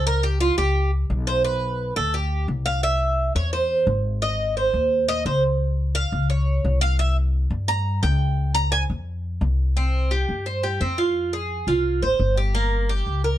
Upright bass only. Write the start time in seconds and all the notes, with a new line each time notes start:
Already playing: C#2
0.58 C#2
1.10 B1
1.97 D2
2.48 C2
3.35 E2
3.87 G#1
4.74 D#2
5.25 C#2
6.12 C#2
6.65 C2
7.51 G2
8.03 C#2
8.90 F2
9.41 C2
10.29 G2
10.81 F2
11.67 C2
12.02 G#1
12.20 G1
13.07 C#2